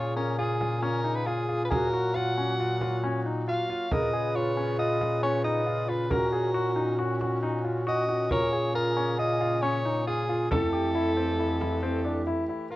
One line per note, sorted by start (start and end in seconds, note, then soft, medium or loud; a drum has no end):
0.00 1.68 A#2 medium
0.00 1.69 C#3 medium
0.00 3.87 A#3 medium
0.00 1.78 F4 medium
0.00 1.69 G#4 medium
0.00 0.16 C#5 medium
0.16 0.32 C#4 medium
0.16 0.37 A#4 medium
0.38 0.54 F4 medium
0.38 0.84 G#4 medium
0.60 0.76 F4 medium
0.60 frame drum soft
0.82 0.98 C#4 medium
0.82 1.17 A#4 medium
1.04 1.20 D#4 medium
1.15 1.28 B4 medium
1.27 1.42 F4 medium
1.27 1.64 G#4 medium
1.49 1.64 F4 medium
1.65 1.71 B4 medium
1.70 3.74 A#2 medium
1.70 3.89 F#3 medium
1.70 3.65 F#4 medium
1.70 3.89 F#4 medium
1.70 1.86 G#4 medium
1.70 2.16 A#4 medium
1.70 frame drum medium
1.93 2.09 F#4 medium
2.15 2.31 F4 medium
2.15 3.03 F#5 medium
2.15 frame drum soft
2.38 2.53 C#4 medium
2.60 2.75 F4 medium
2.81 2.97 F4 medium
2.81 frame drum soft
3.03 3.19 C#4 medium
3.03 frame drum soft
3.26 3.41 D#4 medium
3.48 3.63 F4 medium
3.48 3.94 F5 medium
3.70 3.85 F4 medium
3.91 6.07 A#2 medium
3.91 6.09 C#3 medium
3.91 6.09 F4 medium
3.91 6.18 G#4 medium
3.91 4.06 A#4 medium
3.91 6.09 B4 medium
3.91 4.37 D#5 medium
3.91 frame drum medium
4.13 4.28 G#4 medium
4.35 4.50 F4 medium
4.35 4.78 C#5 medium
4.57 4.72 C#4 medium
4.79 4.94 F4 medium
4.79 5.20 D#5 medium
5.01 5.16 F4 medium
5.01 frame drum soft
5.23 5.38 C#4 medium
5.23 5.43 C#5 medium
5.44 5.60 D#4 medium
5.44 5.91 D#5 medium
5.66 5.82 F4 medium
5.88 6.04 F4 medium
5.88 6.13 B4 medium
6.10 8.27 A#2 medium
6.10 8.28 D#3 medium
6.10 8.28 C#4 medium
6.10 8.37 F#4 medium
6.10 8.29 F#4 medium
6.10 6.26 A#4 medium
6.10 6.99 A#4 medium
6.10 frame drum medium
6.33 6.48 G#4 medium
6.55 6.70 F#4 medium
6.76 6.92 D#4 medium
6.99 7.14 F#4 medium
7.21 7.36 F#4 medium
7.21 frame drum soft
7.43 7.58 D#4 medium
7.64 7.80 F4 medium
7.87 8.02 F#4 medium
7.87 8.28 D#5 medium
8.08 8.24 F#4 medium
8.29 10.47 A#2 medium
8.29 10.49 C#3 medium
8.29 10.49 A#3 medium
8.29 10.57 F4 medium
8.29 10.49 G#4 medium
8.29 8.46 A#4 medium
8.29 8.72 C#5 medium
8.29 frame drum medium
8.53 8.68 G#4 medium
8.74 8.90 F4 medium
8.74 9.16 A#4 medium
8.96 9.12 C#4 medium
9.18 9.34 F4 medium
9.18 9.63 D#5 medium
9.41 9.56 F4 medium
9.62 9.78 C#4 medium
9.62 10.06 C#5 medium
9.85 10.00 D#4 medium
10.07 10.22 F4 medium
10.07 10.48 G#4 medium
10.29 10.44 F4 medium
10.51 12.55 F2 medium
10.51 12.70 E3 medium
10.51 12.70 A3 medium
10.51 12.46 E4 medium
10.51 12.70 G4 medium
10.51 10.66 A4 medium
10.51 12.23 A4 medium
10.51 frame drum medium
10.73 10.88 G4 medium
10.73 frame drum soft
10.95 11.10 E4 medium
11.17 11.32 C4 medium
11.39 11.54 E4 medium
11.61 11.76 E4 medium
11.61 frame drum soft
11.83 11.98 C4 medium
12.05 12.20 D4 medium
12.27 12.42 E4 medium
12.27 frame drum soft
12.49 12.65 E4 medium
12.70 12.76 A#2 medium
12.70 12.76 F4 medium
12.70 12.76 A#4 medium